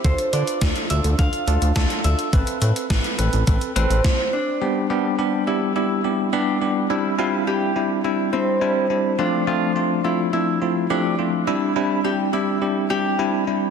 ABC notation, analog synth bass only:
X:1
M:4/4
L:1/16
Q:1/4=105
K:Gmix
V:1 name="Analog synth bass" clef=bass
D,, z D, z D,, z D,, D,, D,, z D,, D,, D,, z D,, z | A,,, z A,, z A,,, z A,,, A,,, A,,, z A,,, A,,, z4 | z16 | z16 |
z16 | z16 |]